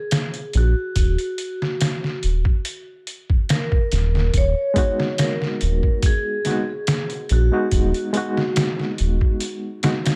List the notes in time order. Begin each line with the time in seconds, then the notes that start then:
Already playing: G#4
0.11 snare, closed hi-hat
0.34 closed hi-hat
0.53 A#1 F#4, closed hi-hat
0.96 D#1, kick, closed hi-hat
1.18 closed hi-hat
1.38 closed hi-hat
1.62 snare
1.81 snare, closed hi-hat
2.04 snare
2.23 D#1, closed hi-hat
2.45 kick
2.65 closed hi-hat
3.07 closed hi-hat
3.30 kick
3.49 A#4, snare, closed hi-hat
3.72 kick
3.92 D#1, snare, closed hi-hat
4.15 snare
4.34 D#1 C#5, kick, closed hi-hat
4.74 G#3 B3 D#4, kick, closed hi-hat
4.78 F#4
5.00 snare
5.18 A#4, snare, closed hi-hat
5.42 snare
5.61 D#1, closed hi-hat
5.83 kick
6.02 G#4, kick, closed hi-hat
6.45 G#3 B3 D#4 F#4, snare, closed hi-hat
6.87 snare, closed hi-hat
7.10 closed hi-hat
7.29 A#1 F#4, closed hi-hat
7.52 G#3 B3 D#4 F#4
7.71 D#1, kick, closed hi-hat
7.94 closed hi-hat
8.13 G#3 B3 D#4, closed hi-hat
8.17 F#4
8.37 snare
8.56 snare, closed hi-hat
8.80 snare
8.98 D#1, closed hi-hat
9.21 kick
9.40 closed hi-hat
9.83 G#3 B3 D#4 F#4, snare, closed hi-hat
10.06 snare, closed hi-hat